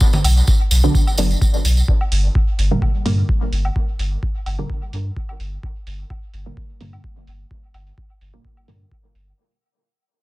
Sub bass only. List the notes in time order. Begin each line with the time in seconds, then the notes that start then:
0.24 B1
0.71 B1
1.18 F#1
1.65 B1
2.12 G1
2.59 G1
3.06 G2
3.52 G1
3.99 G1
4.46 G1
4.93 G2
5.40 G1
5.87 G1
6.34 G1
6.81 G2
7.27 G1
7.74 G1
8.21 G1
8.68 G2
9.15 G1